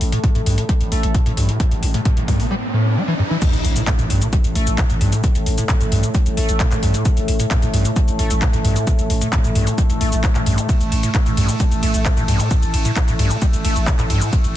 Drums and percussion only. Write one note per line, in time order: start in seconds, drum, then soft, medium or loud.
0.01 open hi-hat loud
0.12 closed hi-hat medium
0.24 kick loud
0.24 closed hi-hat medium
0.35 closed hi-hat medium
0.46 open hi-hat loud
0.58 closed hi-hat medium
0.69 kick loud
0.69 closed hi-hat loud
0.81 closed hi-hat medium
0.92 open hi-hat loud
1.03 closed hi-hat medium
1.15 kick loud
1.15 closed hi-hat medium
1.26 closed hi-hat medium
1.37 open hi-hat loud
1.49 closed hi-hat medium
1.60 kick loud
1.60 closed hi-hat medium
1.71 closed hi-hat medium
1.83 open hi-hat loud
1.94 closed hi-hat medium
2.05 kick loud
2.05 closed hi-hat medium
2.17 closed hi-hat medium
2.28 kick medium
2.28 open hi-hat loud
2.40 open hi-hat medium
3.42 kick loud
3.42 closed hi-hat medium
3.42 crash medium
3.42 shaker soft
3.53 closed hi-hat medium
3.53 shaker soft
3.65 open hi-hat loud
3.76 closed hi-hat medium
3.76 shaker medium
3.87 kick loud
3.87 clap loud
3.87 closed hi-hat loud
3.87 shaker soft
3.99 closed hi-hat medium
3.99 shaker soft
4.10 open hi-hat loud
4.22 closed hi-hat medium
4.22 shaker medium
4.33 kick loud
4.33 closed hi-hat loud
4.33 shaker soft
4.44 closed hi-hat medium
4.44 shaker soft
4.55 open hi-hat loud
4.67 closed hi-hat medium
4.67 shaker medium
4.78 kick loud
4.78 clap loud
4.78 closed hi-hat loud
4.78 shaker medium
4.90 closed hi-hat medium
4.90 shaker soft
5.01 open hi-hat loud
5.12 closed hi-hat medium
5.12 shaker medium
5.24 kick loud
5.24 closed hi-hat loud
5.24 shaker soft
5.35 closed hi-hat medium
5.35 shaker soft
5.46 open hi-hat loud
5.58 closed hi-hat medium
5.58 shaker medium
5.69 kick loud
5.69 clap loud
5.69 closed hi-hat medium
5.69 shaker soft
5.81 closed hi-hat medium
5.81 shaker soft
5.92 open hi-hat loud
6.03 closed hi-hat medium
6.03 shaker medium
6.15 kick loud
6.15 closed hi-hat loud
6.15 shaker medium
6.26 closed hi-hat medium
6.26 shaker soft
6.37 open hi-hat loud
6.49 closed hi-hat medium
6.49 shaker medium
6.60 kick loud
6.60 clap loud
6.60 closed hi-hat loud
6.60 shaker soft
6.71 clap soft
6.71 closed hi-hat medium
6.71 shaker soft
6.83 open hi-hat loud
6.94 closed hi-hat medium
6.94 shaker medium
7.05 kick loud
7.05 closed hi-hat medium
7.05 shaker medium
7.17 closed hi-hat medium
7.17 shaker soft
7.28 open hi-hat loud
7.40 closed hi-hat medium
7.40 shaker medium
7.51 kick loud
7.51 clap loud
7.51 closed hi-hat medium
7.51 shaker medium
7.62 closed hi-hat medium
7.62 shaker soft
7.74 open hi-hat loud
7.85 closed hi-hat medium
7.85 shaker medium
7.96 kick loud
7.96 closed hi-hat medium
7.96 shaker medium
8.08 closed hi-hat medium
8.08 shaker soft
8.19 open hi-hat loud
8.31 closed hi-hat medium
8.31 shaker medium
8.42 kick loud
8.42 clap loud
8.42 closed hi-hat medium
8.42 shaker medium
8.53 closed hi-hat medium
8.53 shaker soft
8.65 open hi-hat loud
8.76 closed hi-hat medium
8.76 shaker medium
8.87 kick loud
8.87 closed hi-hat medium
8.87 shaker medium
8.99 closed hi-hat soft
8.99 shaker soft
9.10 open hi-hat loud
9.21 closed hi-hat medium
9.21 shaker medium
9.33 kick loud
9.33 clap loud
9.33 closed hi-hat medium
9.33 shaker medium
9.44 closed hi-hat medium
9.44 shaker soft
9.55 open hi-hat loud
9.67 closed hi-hat soft
9.67 shaker medium
9.78 kick loud
9.78 closed hi-hat loud
9.78 shaker medium
9.90 closed hi-hat medium
9.90 shaker soft
10.01 open hi-hat loud
10.12 closed hi-hat medium
10.12 shaker medium
10.24 kick loud
10.24 clap loud
10.24 closed hi-hat medium
10.24 shaker medium
10.35 clap soft
10.35 closed hi-hat medium
10.35 shaker soft
10.46 open hi-hat loud
10.58 closed hi-hat medium
10.58 shaker medium
10.69 kick loud
10.69 closed hi-hat medium
10.69 ride medium
10.69 shaker medium
10.81 closed hi-hat medium
10.81 shaker soft
10.92 open hi-hat loud
10.92 ride medium
11.03 closed hi-hat medium
11.03 shaker medium
11.15 kick loud
11.15 clap loud
11.15 closed hi-hat medium
11.15 shaker medium
11.26 closed hi-hat medium
11.26 shaker soft
11.37 open hi-hat loud
11.37 ride medium
11.49 closed hi-hat medium
11.49 shaker medium
11.60 kick loud
11.60 closed hi-hat loud
11.60 ride medium
11.60 shaker medium
11.72 closed hi-hat medium
11.72 shaker soft
11.83 open hi-hat loud
11.83 ride medium
11.94 closed hi-hat medium
11.94 shaker medium
12.05 kick loud
12.05 clap loud
12.05 closed hi-hat medium
12.05 shaker medium
12.17 closed hi-hat soft
12.17 shaker soft
12.28 open hi-hat loud
12.28 ride medium
12.40 closed hi-hat soft
12.40 shaker medium
12.51 kick loud
12.51 closed hi-hat medium
12.51 ride medium
12.51 shaker medium
12.62 closed hi-hat medium
12.62 shaker soft
12.74 open hi-hat loud
12.74 ride medium
12.85 closed hi-hat medium
12.85 shaker medium
12.96 kick loud
12.96 clap loud
12.96 closed hi-hat medium
12.96 ride medium
12.96 shaker medium
13.08 closed hi-hat medium
13.08 shaker soft
13.19 open hi-hat loud
13.19 ride medium
13.31 closed hi-hat soft
13.31 shaker medium
13.42 kick loud
13.42 closed hi-hat medium
13.42 ride medium
13.42 shaker medium
13.53 closed hi-hat medium
13.53 shaker soft
13.65 open hi-hat loud
13.65 ride medium
13.76 closed hi-hat medium
13.76 shaker medium
13.87 kick loud
13.87 clap loud
13.87 closed hi-hat medium
13.87 shaker medium
13.99 clap soft
13.99 closed hi-hat medium
13.99 shaker soft
14.10 open hi-hat medium
14.10 ride medium
14.22 closed hi-hat medium
14.22 shaker medium
14.33 kick loud
14.33 closed hi-hat medium
14.33 ride medium
14.33 shaker medium
14.44 closed hi-hat medium
14.44 shaker soft